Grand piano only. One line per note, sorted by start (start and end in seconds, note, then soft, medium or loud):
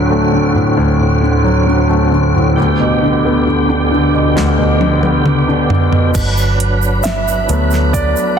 0.00 0.76 D2 medium
0.00 0.53 A2 soft
0.00 0.32 D3 soft
0.00 1.41 F#3 soft
0.10 1.86 A3 soft
0.32 1.20 D3 soft
0.54 0.98 A2 soft
0.77 2.53 D2 medium
0.99 2.33 A2 soft
1.21 1.65 D3 soft
1.44 2.53 F#3 soft
1.67 2.10 D3 soft
1.89 2.55 A3 soft
2.11 2.55 D3 soft
2.34 2.56 A2 soft
2.57 4.34 D2 medium
2.80 4.12 B2 soft
3.02 3.45 D3 soft
3.25 5.00 B3 soft
3.47 3.90 D3 soft
3.69 5.44 D4 soft
3.92 4.79 D3 soft
4.13 4.57 B2 soft
4.36 6.11 D2 medium
4.59 5.91 B2 soft
4.81 5.24 D3 soft
5.03 6.12 B3 soft
5.26 5.69 D3 soft
5.48 6.13 D4 soft
5.70 6.14 D3 soft
5.92 6.14 B2 soft
7.04 7.96 E5 medium
7.48 8.39 F#3 soft
7.48 8.39 A3 soft
7.48 8.39 B3 medium
7.93 8.39 D5 medium